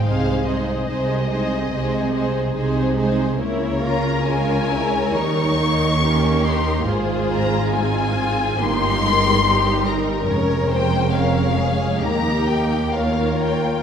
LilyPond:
<<
  \new Staff \with { instrumentName = "Violin section" } { \time 4/4 \key aes \major \tempo 4 = 70 f''8 ees''2. r8 | r8 bes''8 aes''4 des'''4. c'''8 | r8 bes''8 aes''4 c'''4. bes''8 | r8 g''8 f''4 bes''8 g''8 f''8 g''8 | }
  \new Staff \with { instrumentName = "Violin section" } { \time 4/4 \key aes \major << { c''8 c''8 c''8 c''8 c''8 c''8 c''8 c''8 | des''4 des''2 bes'4 | c''4 aes'4 bes'2 | des''8 c''8 des''4 bes'4 des''4 | } \\ { aes'8 aes'8 aes'8 aes'8 aes'8 aes'8 aes'8 aes'8 | bes'2. g'4 | aes'4 ees'8 f'8 g'4 g'8 bes'8~ | bes'4 bes'8 aes'8 g'4 bes'4 | } >> }
  \new Staff \with { instrumentName = "Viola section" } { \time 4/4 \key aes \major << { ees'8 ees'8 ees'8 ees'8 ees'8 ees'8 ees'8 ees'8 | fes'8 f'8 f'8 fes'8 ees'4 des'8 ees'8 | f'2 ees'4 ees'4 | des'2 ees'4 f'4 | } \\ { aes8 aes8 aes8 aes8 aes8 aes8 aes8 aes8 | bes4 aes4 g8 bes4. | aes4 c'4 bes8 aes8 g4 | aes2 bes4 bes4 | } >> }
  \new Staff \with { instrumentName = "Cello section" } { \clef bass \time 4/4 \key aes \major c4 c4 c4 c4 | des2 ees2 | aes,2 g,2 | f,2 ees,2 | }
  \new Staff \with { instrumentName = "Double bass section" } { \clef bass \time 4/4 \key aes \major c,4 c,4 c,4 c,4 | des,2 ees,2 | aes,,2 g,,2 | f,,2 ees,2 | }
>>